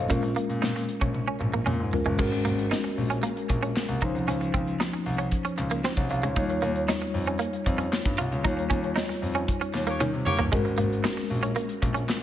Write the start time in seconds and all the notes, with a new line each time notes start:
Already playing: A4 C5 D#5 F5
0.08 A#1 G#3 A#3 C#4 F4 A#4, kick, closed hi-hat
0.23 muted clean electric guitar stroke, closed hi-hat
0.36 A#3, closed hi-hat
0.49 A#2, closed hi-hat
0.62 A#2 D#4, snare
0.76 muted clean electric guitar stroke, snare, closed hi-hat
0.89 closed hi-hat
1.01 A#1 C#4, kick, closed hi-hat
1.14 high tom
1.28 C#4
1.40 A#1, muted clean electric guitar stroke, mid tom
1.54 A#3, mid tom
1.66 A#2 C#4, mid tom
1.80 G#2
1.93 G#3 C#4 F4 A#4, muted clean electric guitar stroke, floor tom
2.05 F#1 G#3, floor tom
2.18 G#1 G#3 C#4 F#4 A#4, kick, crash
2.32 muted clean electric guitar stroke, closed hi-hat
2.45 G#1 A#3, closed hi-hat
2.59 closed hi-hat
2.71 D#4, snare, clap
2.84 muted clean electric guitar stroke, closed hi-hat
2.97 A#1, open hi-hat
3.10 C#4, closed hi-hat
3.23 A#3, closed hi-hat
3.37 closed hi-hat
3.49 A#1, muted clean electric guitar stroke, kick, clap, closed hi-hat
3.63 C#4, closed hi-hat
3.76 snare, clap
3.88 C2, closed hi-hat
4.01 C#2 F3 C#4 D#4 C5, kick, closed hi-hat
4.14 C2, closed hi-hat
4.27 C#2 C#4, closed hi-hat
4.41 muted clean electric guitar stroke, closed hi-hat
4.54 C#2 C4, kick, closed hi-hat
4.67 closed hi-hat
4.80 D#4, snare, clap
4.93 muted clean electric guitar stroke, closed hi-hat
5.06 C2, open hi-hat
5.18 C#4, closed hi-hat
5.31 kick, closed hi-hat
5.45 C#4, closed hi-hat
5.58 C#2, muted clean electric guitar stroke, clap, closed hi-hat
5.71 A#3, closed hi-hat
5.84 C4, snare, clap
5.96 C2 C#5, kick, closed hi-hat
6.10 C2 F5, muted clean electric guitar stroke, closed hi-hat
6.23 C#2 G#3 C#5, closed hi-hat
6.36 D#2 G3 D#4 F4 C#5, kick, closed hi-hat
6.50 muted clean electric guitar stroke, closed hi-hat
6.62 D#2 A#3, closed hi-hat
6.76 closed hi-hat
6.88 D#4, snare, clap
7.00 muted clean electric guitar stroke, closed hi-hat
7.14 F2, open hi-hat
7.27 C#4, closed hi-hat
7.39 A#3, closed hi-hat
7.53 closed hi-hat
7.66 F2, muted clean electric guitar stroke, kick, clap, closed hi-hat
7.78 C#4, closed hi-hat
7.93 snare, clap
8.05 G2, kick, closed hi-hat
8.18 C2 F4, closed hi-hat
8.32 C#2, closed hi-hat
8.43 D#2 G3 D#4 F4 C#5, kick, closed hi-hat
8.57 muted clean electric guitar stroke, closed hi-hat
8.70 D#2 C#4, kick, closed hi-hat
8.84 closed hi-hat
8.96 D#4, snare, clap
9.09 muted clean electric guitar stroke, snare, closed hi-hat
9.22 F2, open hi-hat
9.35 C#4, closed hi-hat
9.48 kick, closed hi-hat
9.61 C#4, closed hi-hat
9.74 D#2, muted clean electric guitar stroke, snare, clap, closed hi-hat
9.87 A#3 G4 C#5, closed hi-hat
10.00 D#3 C#4, clap, high tom
10.13 C3
10.26 A#3 G4 C#5, muted clean electric guitar stroke, mid tom
10.39 G1 A#3, floor tom
10.52 G#1 G#3 C#4 F#4 A#4, kick, closed hi-hat
10.65 muted clean electric guitar stroke, closed hi-hat
10.78 G#1 A#3, closed hi-hat
10.93 closed hi-hat
11.04 D#4, snare, clap
11.17 muted clean electric guitar stroke, snare, closed hi-hat
11.30 A#1, open hi-hat
11.43 C#4, closed hi-hat
11.56 A#3, closed hi-hat
11.69 closed hi-hat
11.82 A#1, muted clean electric guitar stroke, kick, clap, closed hi-hat
11.94 C#4, closed hi-hat
12.09 snare, clap